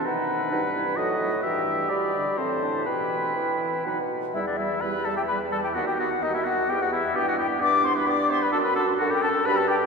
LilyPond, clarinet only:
\new Staff \with { instrumentName = "Clarinet" } { \time 3/4 \key e \minor \tempo 4 = 129 dis'4 dis'8 e'8 fis'4 | g'2 c'8 d'8 | e'2 dis'8 r8 | g8 g8 g8 g8 g8 g8 |
b8 b8 b8 b8 b8 b8 | b8 b8 b8 b8 b8 b8 | d'8 d'8 d'8 d'8 d'8 d'8 | }